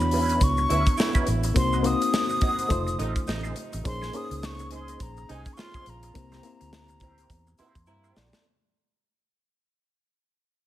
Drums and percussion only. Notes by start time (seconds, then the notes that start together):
0.00 shaker
0.11 open hi-hat
0.29 closed hi-hat, shaker
0.41 kick, closed hi-hat, shaker
0.57 shaker
0.70 closed hi-hat
0.86 kick, closed hi-hat, shaker
0.97 snare, shaker
1.15 kick, shaker
1.27 closed hi-hat, shaker
1.43 closed hi-hat, shaker
1.56 kick, closed hi-hat, shaker
1.73 shaker
1.84 closed hi-hat, shaker
2.02 closed hi-hat, shaker
2.13 snare, shaker
2.30 shaker
2.41 kick, closed hi-hat
2.59 closed hi-hat, shaker
2.70 kick, closed hi-hat, shaker
2.87 closed hi-hat, shaker
2.99 closed hi-hat
3.16 kick, closed hi-hat, shaker
3.27 snare, shaker
3.44 shaker
3.56 closed hi-hat, shaker
3.72 closed hi-hat, shaker
3.85 kick, closed hi-hat, shaker
4.02 snare, shaker
4.13 closed hi-hat, shaker
4.31 closed hi-hat, shaker
4.43 snare, shaker
4.59 closed hi-hat, shaker
4.71 closed hi-hat
4.88 closed hi-hat, shaker
5.00 kick, closed hi-hat, shaker
5.17 shaker
5.29 closed hi-hat
5.45 kick, closed hi-hat, shaker
5.57 snare, shaker
5.74 kick, shaker
5.86 closed hi-hat, shaker
6.03 closed hi-hat, shaker
6.15 kick, closed hi-hat, shaker
6.32 snare, closed hi-hat, shaker
6.43 closed hi-hat, shaker
6.61 closed hi-hat, shaker
6.73 snare, shaker
6.88 closed hi-hat, shaker
7.00 kick, closed hi-hat, shaker
7.18 closed hi-hat, shaker
7.30 kick, closed hi-hat, shaker
7.47 shaker
7.58 closed hi-hat, shaker
7.75 kick, closed hi-hat, shaker
7.86 shaker
8.04 shaker
8.16 snare, shaker
8.33 snare, shaker